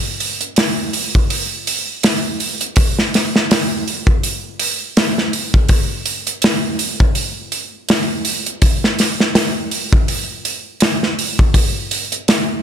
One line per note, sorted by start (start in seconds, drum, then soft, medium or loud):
0.20 open hi-hat medium
0.41 closed hi-hat soft
0.56 snare loud
0.56 open hi-hat medium
0.93 open hi-hat medium
1.15 kick medium
1.30 open hi-hat medium
1.67 open hi-hat medium
2.03 snare loud
2.03 open hi-hat medium
2.40 open hi-hat medium
2.61 closed hi-hat soft
2.76 kick loud
2.76 open hi-hat medium
2.99 snare soft
3.14 snare soft
3.14 open hi-hat medium
3.36 snare medium
3.51 snare loud
3.51 open hi-hat medium
3.88 open hi-hat medium
4.07 kick medium
4.23 open hi-hat medium
4.59 open hi-hat medium
4.97 snare loud
4.97 open hi-hat medium
5.18 snare soft
5.33 open hi-hat medium
5.54 kick medium
5.69 kick loud
5.69 open hi-hat medium
6.06 open hi-hat medium
6.27 closed hi-hat soft
6.42 snare loud
6.42 open hi-hat medium
6.79 open hi-hat medium
7.00 kick medium
7.15 open hi-hat medium
7.52 open hi-hat medium
7.89 snare loud
7.89 open hi-hat medium
8.25 open hi-hat medium
8.46 closed hi-hat soft
8.62 kick loud
8.62 open hi-hat medium
8.84 snare soft
8.99 snare soft
8.99 open hi-hat medium
9.20 snare soft
9.35 snare loud
9.35 open hi-hat medium
9.71 open hi-hat medium
9.93 kick loud
10.08 open hi-hat medium
10.45 open hi-hat medium
10.80 snare loud
10.80 open hi-hat medium
11.03 snare soft
11.19 open hi-hat medium
11.39 kick loud
11.54 kick loud
11.54 open hi-hat medium
11.91 open hi-hat medium
12.12 closed hi-hat soft
12.28 snare loud
12.28 open hi-hat medium